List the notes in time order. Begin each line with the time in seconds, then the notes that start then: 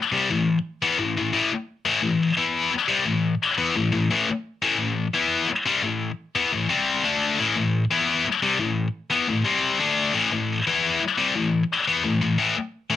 0.12 C3 G3
0.31 A2 E3
0.82 E3 B3
0.99 A2 E3
1.18 A2 E3
1.33 A2 E3
1.85 A2 E3
2.02 A2 E3
2.37 E3 B3 E4
2.72 muted distorted electric guitar stroke
2.88 C3 G3
3.06 A2 E3
3.58 E3 B3
3.76 A2 E3
3.92 A2 E3
4.11 A2 E3
4.63 A2 E3
4.79 A2 E3
5.14 E3 B3 E4
5.49 muted distorted electric guitar stroke
5.66 C3 G3
5.83 A2 E3
6.35 E3 B3
6.53 A2 E3
6.69 C3 G3 C4
7.04 D3 A3 D4
7.38 A2 E3
7.56 A2 E3
7.91 E3 B3 E4
8.26 muted distorted electric guitar stroke
8.43 C3 G3
8.60 A2 E3
9.11 E3 B3
9.29 A2 E3
9.45 C3 G3 C4
9.80 D3 A3 D4
10.14 A2 E3
10.32 A2 E3
10.67 E3 B3 E4
11.01 muted distorted electric guitar stroke
11.18 C3 G3
11.36 A2 E3
11.88 E3 B3
12.04 A2 E3
12.21 A2 E3
12.38 A2 E3
12.90 A2 E3